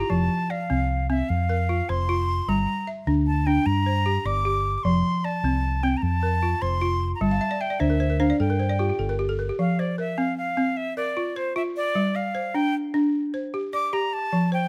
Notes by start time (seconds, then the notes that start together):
Already playing: A#5
0.00 G4
0.10 F1 F3 A5
0.50 D5 F5
0.70 C2 C4
1.10 C4 E5
1.29 F2 F5
1.49 A#4
1.69 F4
1.89 F1 C5 C6
2.09 F4
2.48 G1 G3 A#5
2.87 E5
3.07 D2 D4
3.27 A5
3.46 D4 G5
3.66 G2 A#5
3.86 C5
4.06 G4
4.25 G1 D5 D6
4.45 G4
4.78 D6
4.83 F1 F3 C6
5.24 D5 A5
5.43 C2 C4
5.83 C4 G5
5.97 A#5
6.02 F2 A5
6.23 A#4
6.43 F4
6.62 F1 C5 C6
6.81 F4
7.15 A#5
7.21 G1 G3 A5
7.31 F5
7.41 E5
7.51 D5
7.61 E5 G5
7.70 D5
7.80 D2 D4 C5 E5
7.90 A#4
8.00 C5
8.10 A#4
8.20 D4 C5 F5
8.30 D5
8.40 G2 A4 G5
8.50 A#4
8.60 C5
8.69 D5
8.79 F4 G4
8.89 G4
8.99 G1 A4
9.09 A#4
9.19 G4
9.29 A4
9.39 A#4
9.49 G4
9.59 F3 F5
9.79 C5 D5
9.98 A#4 E5
10.18 C4 F5
10.38 F5
10.57 C4
10.77 E5
10.97 A#4 D5
11.17 F4
11.36 C5
11.56 F4 E5
11.77 D5
11.95 G3
12.15 D5 F5
12.35 C5
12.54 D4 G5
12.94 D4
13.34 C5
13.54 G4
13.73 D5 D6
13.93 G4 A#5
14.13 A5
14.33 F3
14.52 C5 G5